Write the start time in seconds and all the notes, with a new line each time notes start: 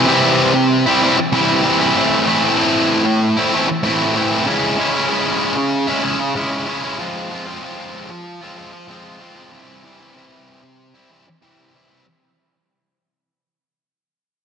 0.06 C3 E3 G3 C4 E4
0.54 muted distorted electric guitar stroke
0.86 G3 C4 E4
1.01 E3 G3 C4 E4
1.18 muted distorted electric guitar stroke
1.32 C3 E3 G3 C4 E4
1.63 E3 G3 C4 E4
1.80 G3 C4 E4
1.95 A2 E3 A3 C4 E4
2.26 E3 A3 C4 E4
2.42 A3 C4 E4
2.57 A2 E3 A3 C4 E4
3.05 muted distorted electric guitar stroke
3.37 A3 C4 E4
3.52 E3 A3 C4 E4
3.68 muted distorted electric guitar stroke
3.83 A2 E3 A3 C4 E4
4.15 E3 A3 C4 E4
4.30 A3 C4 E4
4.46 C#3 G#3 C#4 E4
4.77 C#3 G#3 C#4 E4
4.93 G#3 C#4 E4
5.08 C#3 G#3 C#4 E4
5.57 muted distorted electric guitar stroke
5.87 G#3 C#4 E4
6.03 C#3 G#3 C#4 E4
6.20 muted distorted electric guitar stroke
6.35 C#3 G#3 C#4 E4
6.67 C#3 G#3 C#4 E4
6.83 G#3 C#4 E4
6.99 F3 G#3 C4 F4
7.30 F3 G#3 C4 F4
7.46 G#3 C4 F4
7.62 F3 G#3 C4 F4
8.10 muted distorted electric guitar stroke
8.41 G#3 C4 F4
8.56 F3 G#3 C4 F4
8.73 muted distorted electric guitar stroke
8.88 F3 G#3 C4 F4
9.20 F3 G#3 C4 F4
9.36 G#3 C4 F4
9.52 C3 E3 G3 C4 E4
9.84 E3 G3 C4 E4
10.00 G3 C4 E4
10.15 C3 E3 G3 C4 E4
10.64 muted distorted electric guitar stroke
10.95 G3 C4 E4
11.10 E3 G3 C4 E4
11.27 muted distorted electric guitar stroke
11.42 C3 E3 G3 C4 E4
11.74 E3 G3 C4 E4
11.89 G3 C4 E4